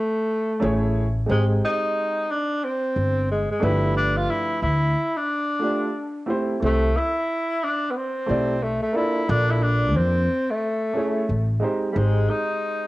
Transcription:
0.00 0.96 A3 medium
0.60 1.25 A1 loud
0.60 1.02 A3 medium
0.60 1.03 C#4 medium
0.60 1.03 E4 medium
0.60 1.04 G#4 medium
0.64 1.04 C#5 medium
1.26 1.60 G#1 loud
1.26 2.22 G#3 medium
1.26 2.23 C4 medium
1.26 2.23 D#4 medium
1.26 2.24 G4 medium
1.26 2.24 C5 medium
1.31 1.45 G#3 medium
1.65 2.33 D#4 loud
2.31 2.66 D4 medium
2.64 3.30 C4 medium
2.96 3.45 G1 medium
3.31 3.49 G#3 medium
3.51 3.65 G#3 medium
3.60 4.25 G1 medium
3.60 4.70 F3 medium
3.60 4.69 A3 medium
3.60 4.69 D4 medium
3.60 3.96 E4 medium
3.60 4.70 G4 medium
3.60 4.71 B4 medium
3.97 4.18 D4 loud
4.17 4.31 F4 loud
4.30 4.62 E4 loud
4.62 4.93 D2 medium
4.62 5.18 E4 medium
5.17 6.29 D4 medium
5.59 5.86 A3 medium
5.59 5.86 D4 soft
5.59 5.87 F4 medium
5.59 5.88 G4 medium
5.64 5.88 D5 medium
6.26 6.53 A3 medium
6.26 6.53 C4 medium
6.26 6.54 E4 medium
6.26 6.54 G4 medium
6.26 6.55 C5 medium
6.60 6.93 C2 medium
6.60 6.86 A3 medium
6.60 6.87 C4 soft
6.60 6.87 E4 medium
6.60 6.88 G4 soft
6.60 6.88 C5 medium
6.65 6.98 A3 loud
6.97 7.65 E4 loud
7.64 7.92 D4 medium
7.91 7.99 B3 medium
7.97 8.64 C4 medium
8.26 8.78 B1 medium
8.26 8.53 A3 medium
8.26 8.53 C4 medium
8.26 8.54 E4 medium
8.26 8.54 G4 medium
8.26 8.55 D5 medium
8.63 8.82 A3 medium
8.82 8.97 A3 medium
8.92 9.19 A#3 medium
8.92 9.20 D4 medium
8.92 9.31 E4 medium
8.92 9.20 F4 medium
8.92 9.21 A4 medium
8.97 9.21 D5 medium
9.27 9.96 A#1 loud
9.27 10.22 A#3 medium
9.27 10.23 D4 medium
9.27 9.52 D4 loud
9.27 10.23 F4 soft
9.27 10.24 A4 medium
9.27 10.24 D5 medium
9.50 9.64 E4 medium
9.63 9.98 D4 medium
9.96 10.26 F2 medium
9.96 10.52 C4 medium
10.51 11.63 A3 medium
10.93 11.20 A3 medium
10.93 11.20 C#4 medium
10.93 11.21 E4 medium
10.93 11.21 G#4 medium
10.98 11.22 C#5 medium
11.29 11.60 A1 medium
11.60 11.86 G#3 medium
11.60 11.87 C4 medium
11.60 11.87 D#4 medium
11.60 11.88 G4 medium
11.64 11.88 C5 medium
11.91 11.98 G3 medium
11.91 12.87 G#3 medium
11.91 12.87 C4 medium
11.91 12.87 D#4 medium
11.96 12.26 G#1 loud
11.96 12.31 G#3 medium
11.96 12.87 G4 medium
11.96 12.87 C5 medium
12.30 12.87 D#4 loud

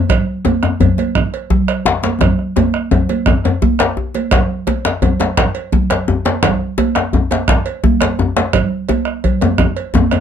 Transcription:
0.09 bombo rim loud
0.09 bombo low loud
0.09 cowbell medium
0.09 high conga soft
0.09 low conga medium
0.09 djembe bass medium
0.45 cowbell soft
0.45 djembe slap medium
0.45 djembe tone medium
0.45 high conga medium
0.63 bombo rim medium
0.63 djembe tone medium
0.80 cowbell medium
0.80 djembe slap soft
0.80 djembe bass medium
0.80 low conga medium
0.80 djembe bass medium
0.98 cowbell soft
0.98 djembe slap medium
0.98 high conga medium
1.15 bombo rim medium
1.15 bombo low medium
1.15 djembe tone medium
1.34 cowbell soft
1.50 djembe slap medium
1.50 djembe bass medium
1.50 low conga medium
1.68 bombo rim medium
1.68 cowbell soft
1.86 djembe slap loud
1.86 djembe tone medium
2.03 cowbell soft
2.03 djembe slap medium
2.03 high conga medium
2.21 bombo rim medium
2.21 bombo low medium
2.21 cowbell medium
2.21 djembe tone loud
2.21 low conga medium
2.21 djembe bass medium
2.38 bombo rim soft
2.38 djembe slap soft
2.56 bombo rim soft
2.56 cowbell soft
2.56 djembe slap medium
2.56 high conga medium
2.56 djembe tone medium
2.74 bombo rim medium
2.91 cowbell soft
2.91 djembe slap soft
2.91 djembe tone loud
2.91 high conga soft
2.91 low conga medium
2.91 djembe bass medium
3.09 cowbell soft
3.09 djembe slap medium
3.09 high conga medium
3.26 bombo rim medium
3.26 bombo low medium
3.26 djembe slap soft
3.26 djembe tone medium
3.26 djembe tone loud
3.44 bombo rim soft
3.44 cowbell soft
3.44 high conga soft
3.44 djembe tone medium
3.62 djembe slap medium
3.62 high conga medium
3.62 djembe bass medium
3.62 low conga medium
3.79 bombo rim medium
3.79 cowbell medium
3.79 djembe slap loud
3.97 djembe tone medium
4.14 cowbell medium
4.14 djembe slap medium
4.14 high conga medium
4.31 bombo rim loud
4.31 bombo low loud
4.31 cowbell medium
4.31 djembe slap loud
4.31 high conga soft
4.31 djembe bass medium
4.31 low conga medium
4.67 cowbell medium
4.67 djembe slap medium
4.67 djembe tone medium
4.67 high conga medium
4.85 bombo rim medium
4.85 djembe slap medium
5.02 cowbell medium
5.02 djembe slap soft
5.02 djembe tone medium
5.02 djembe bass medium
5.02 low conga medium
5.20 cowbell medium
5.20 djembe slap medium
5.20 high conga medium
5.37 bombo rim loud
5.37 bombo low loud
5.37 djembe slap loud
5.37 djembe tone medium
5.55 cowbell medium
5.72 djembe slap medium
5.72 high conga medium
5.72 low conga medium
5.72 djembe bass medium
5.90 bombo rim medium
5.90 cowbell medium
5.90 djembe slap medium
6.08 djembe tone medium
6.25 cowbell medium
6.25 djembe slap medium
6.25 high conga medium
6.43 bombo rim loud
6.43 bombo low loud
6.43 cowbell medium
6.43 djembe slap loud
6.43 high conga soft
6.43 djembe bass medium
6.43 low conga medium
6.78 cowbell medium
6.78 djembe slap medium
6.78 djembe tone medium
6.78 high conga medium
6.95 bombo rim medium
6.95 djembe slap medium
7.13 djembe slap soft
7.13 djembe tone medium
7.13 djembe bass medium
7.13 low conga medium
7.31 cowbell medium
7.31 djembe slap medium
7.31 high conga medium
7.48 bombo rim loud
7.48 bombo low loud
7.48 djembe slap loud
7.48 djembe tone medium
7.66 cowbell medium
7.84 djembe slap medium
7.84 high conga medium
7.84 djembe bass medium
7.84 low conga medium
8.01 bombo rim medium
8.01 cowbell medium
8.01 djembe slap medium
8.19 djembe tone medium
8.36 cowbell medium
8.36 djembe slap medium
8.36 high conga medium
8.53 bombo rim loud
8.53 bombo low loud
8.53 cowbell medium
8.53 high conga soft
8.53 djembe bass medium
8.53 low conga medium
8.89 cowbell medium
8.89 djembe slap medium
8.89 djembe tone medium
8.89 high conga medium
9.05 bombo rim medium
9.24 cowbell medium
9.24 djembe slap soft
9.24 low conga medium
9.24 djembe bass medium
9.41 cowbell soft
9.41 djembe slap medium
9.41 djembe tone loud
9.41 high conga medium
9.58 bombo rim medium
9.58 bombo low medium
9.58 djembe tone medium
9.77 cowbell soft
9.94 djembe slap medium
9.94 high conga medium
9.94 djembe tone loud
9.94 djembe bass medium
9.94 low conga medium
10.11 bombo rim medium
10.11 cowbell medium
10.11 djembe tone medium

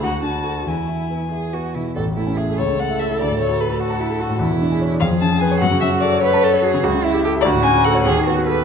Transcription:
0.01 0.64 D2 medium
0.01 0.66 F#4 medium
0.01 0.23 F#5 medium
0.22 0.57 D4 soft
0.22 0.69 A5 medium
0.44 0.64 F#4 soft
0.44 0.64 A4 soft
0.65 1.92 E2 medium
0.65 1.27 E4 medium
0.65 1.76 G#5 medium
0.88 1.23 E4 soft
1.10 1.45 B3 soft
1.32 1.67 E4 soft
1.32 1.55 G#4 medium
1.53 1.88 B3 soft
1.53 1.76 F#4 medium
1.75 1.97 B2 soft
1.75 1.95 E4 medium
1.95 2.57 A1 medium
1.95 2.03 A4 medium
2.06 2.23 E2 soft
2.16 2.34 A3 medium
2.16 2.38 E4 medium
2.27 2.44 C#4 medium
2.37 2.54 E4 medium
2.37 2.59 G#4 medium
2.49 2.59 A4 medium
2.58 3.18 C#2 medium
2.58 3.81 A4 medium
2.58 2.81 C#5 medium
2.69 2.86 C#3 soft
2.79 2.96 A3 medium
2.79 3.01 F#5 medium
2.90 3.06 E4 medium
2.99 3.16 A4 medium
2.99 3.20 E5 medium
3.10 3.20 E4 medium
3.20 4.37 D2 medium
3.20 3.39 D5 medium
3.30 3.46 A2 medium
3.39 3.56 A3 medium
3.39 3.62 C#5 medium
3.49 3.66 F#4 medium
3.60 3.76 A4 medium
3.60 3.80 B4 medium
3.70 3.86 F#4 medium
3.80 4.01 F#4 medium
3.80 4.39 A4 medium
3.80 3.96 F#5 medium
3.90 4.06 A5 medium
4.00 4.22 E4 medium
4.00 4.16 F#5 medium
4.10 4.26 A4 medium
4.19 4.36 F#4 medium
4.19 4.40 F#4 medium
4.29 4.40 A2 medium
4.39 4.98 E2 medium
4.39 4.99 E4 medium
4.50 4.66 B2 medium
4.61 4.77 D4 medium
4.72 4.87 G#4 medium
4.81 4.97 C#5 medium
4.93 5.01 D5 medium
5.00 5.59 F2 medium
5.00 5.63 G#4 medium
5.00 5.08 F5 loud
5.11 5.27 F3 medium
5.21 5.37 C#4 medium
5.21 5.41 A5 loud
5.31 5.47 G#4 medium
5.40 5.57 B4 medium
5.40 5.59 G#5 loud
5.51 5.61 C#5 medium
5.59 6.79 F#2 medium
5.59 6.22 F#4 loud
5.59 5.80 F#5 loud
5.71 5.87 C#3 medium
5.81 5.97 C#4 medium
5.81 5.89 E5 loud
5.92 6.08 F#4 medium
6.00 6.18 A4 medium
6.00 6.22 D5 loud
6.13 6.29 C#5 medium
6.20 6.45 B4 loud
6.20 6.81 C#5 loud
6.20 6.39 F#5 medium
6.34 6.49 A5 medium
6.43 6.66 A4 medium
6.43 6.58 F#5 medium
6.54 6.69 C#5 medium
6.62 6.78 F#4 medium
6.62 6.85 G#4 loud
6.74 6.83 C#3 medium
6.83 7.42 C#2 medium
6.83 7.05 F#4 loud
6.95 7.09 C#3 medium
7.04 7.23 E4 loud
7.04 7.19 E4 medium
7.14 7.29 G4 medium
7.24 7.32 G4 medium
7.24 7.40 A4 medium
7.35 7.44 E5 medium
7.41 8.04 D2 loud
7.41 7.49 D5 loud
7.45 8.04 F#4 loud
7.54 7.70 A2 medium
7.62 7.80 C#4 medium
7.62 7.86 G#5 loud
7.75 7.91 F#4 medium
7.84 8.01 A4 medium
7.84 8.05 F#5 loud
7.95 8.05 C#5 medium
8.05 8.64 D#2 loud
8.05 8.25 G#4 loud
8.16 8.32 D#3 medium
8.26 8.42 B3 medium
8.26 8.46 F#4 medium
8.37 8.52 F#4 medium
8.47 8.62 A4 medium
8.47 8.64 B4 loud
8.57 8.64 B4 medium

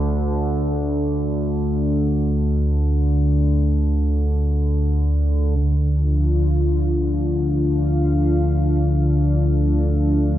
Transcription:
0.00 5.59 D2 medium
0.00 5.57 D3 medium
5.59 10.38 D2 medium
5.59 10.38 D3 medium
5.59 10.38 D4 medium
5.91 10.38 F4 medium
7.60 10.38 F5 medium
9.35 10.38 A4 medium

